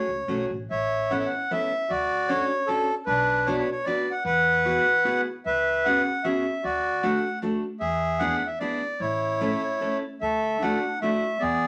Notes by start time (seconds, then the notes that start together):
Already playing: C#5
0.08 C#2
0.28 B1 A3 C#4 F#4 G#4
0.50 A1
0.70 A1 C#5 E5
1.10 B3 C#4 E4 A4 F#5
1.19 E5
1.26 F#5
1.51 B3 C#4 E4 A4 E5
1.90 D2 F#4 D5
2.28 C#4 D4 F#4 A4 C#5
2.67 C#4 D4 F#4 A4
3.06 B1 D4 B4
3.46 B3 D4 F#4 B4 C#5
3.58 C#5
3.71 C#5
3.85 B3 D4 F#4 B4 D5
4.11 F#5
4.25 E2 B4 F#5
4.65 B3 E4 F#4 G#4
5.04 B3 E4 F#4 G#4
5.46 C#2 B4 E5
5.85 B3 C#4 F#4 G#4 F#5
6.24 B3 C#4 F#4 G#4 E5
6.64 D2 F#4 D5
7.03 A3 D4 F#4 A4 F#5
7.42 A3 D4 F#4 A4
7.80 E2 G#4 E5
8.19 B3 D4 E4 G#4 F#5
8.47 E5
8.60 B3 D4 E4 G#4 D5
9.00 A1 E4 C#5
9.41 A3 C#4 E4 A4
9.80 A3 C#4 E4 A4
10.19 D2 A3 A4 E5
10.59 A3 D4 F#4 F#5
10.63 E4
11.01 A3 D4 E4 F#4 E5
11.39 E2 B3 G#4 D5